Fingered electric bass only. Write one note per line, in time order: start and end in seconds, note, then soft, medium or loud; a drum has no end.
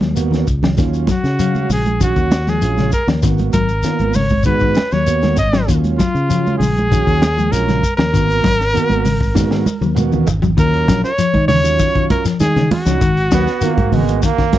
0.01 0.43 D#2 medium
0.48 0.76 C#2 medium
0.78 1.06 D#2 loud
1.24 1.66 C#3 medium
1.69 2.12 A#1 medium
2.16 2.58 D#2 medium
2.62 2.90 A#1 medium
3.07 3.22 D#2 medium
3.23 3.52 G#1 loud
3.54 3.82 G#1 medium
3.99 4.42 G#1 medium
4.46 4.74 G#2 medium
4.92 5.35 D#2 medium
5.38 5.66 G#1 medium
5.69 5.97 D#2 loud
6.15 6.57 C#3 medium
6.60 7.03 A#1 medium
7.07 7.49 D#2 medium
7.52 7.80 A#1 medium
7.98 8.12 D#2 medium
8.14 8.42 G#1 loud
8.44 8.72 G#1 medium
8.90 9.32 G#1 medium
9.35 9.63 G#2 medium
9.81 10.23 D#2 medium
10.27 10.55 G#1 medium
10.58 10.86 D#2 medium
10.88 11.03 A#1 loud
11.18 muted fingered electric bass stroke soft
11.34 11.48 D#3 medium
11.49 11.77 D#2 medium
12.40 12.68 D#3 medium
12.86 13.02 C#2 medium
13.02 13.29 G#1 medium
13.32 13.46 D#2 loud
13.62 muted fingered electric bass stroke soft
13.78 13.91 G#2 medium
13.92 14.20 G#1 medium